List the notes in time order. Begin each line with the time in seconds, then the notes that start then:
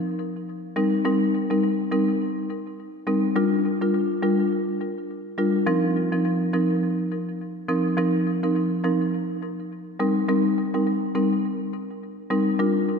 0.76 G3 C4 D#4 A#4
1.05 G3 C4 D#4 A#4
1.50 G3 C4 D#4 A#4
1.91 G3 C4 D#4 A#4
3.07 G3 C4 D#4 A#4
3.36 G3 D4 F4 A#4
3.81 G3 D4 F4 A#4
4.22 G3 D4 F4 A#4
5.38 G3 D4 F4 A#4
5.66 F3 C4 D#4 A#4
6.12 F3 C4 D#4 A#4
6.53 F3 C4 D#4 A#4
7.68 F3 C4 D#4 A#4
7.97 F3 C4 D#4 A#4
8.43 F3 C4 D#4 A#4
8.84 F3 C4 D#4 A#4
9.99 G3 C4 D#4 A#4
10.28 G3 C4 D#4 A#4
10.74 G3 C4 D#4 A#4
11.15 G3 C4 D#4 A#4
12.30 G3 C4 D#4 A#4
12.59 G3 D4 F4 A#4